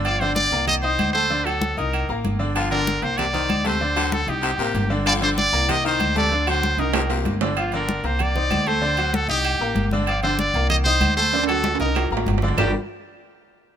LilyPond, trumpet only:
\new Staff \with { instrumentName = "Trumpet" } { \time 4/4 \key g \minor \tempo 4 = 192 d''8 c''8 d''4 ees''8 c''4 c''8~ | c''8 a'4 bes'4 r4. | f'8 bes'4 c''8 d''4. c''8~ | c''4 a'8 g'2 r8 |
d''8 c''8 d''4 ees''8 c''4 d''8~ | d''8 c''4 bes'4 r4. | f'8 bes'4 c''8 d''4. c''8~ | c''4 a'8 g'2 r8 |
d''8 c''8 d''4 ees''8 c''4 c''8~ | c''8 a'4 bes'4 r4. | g'8 r2. r8 | }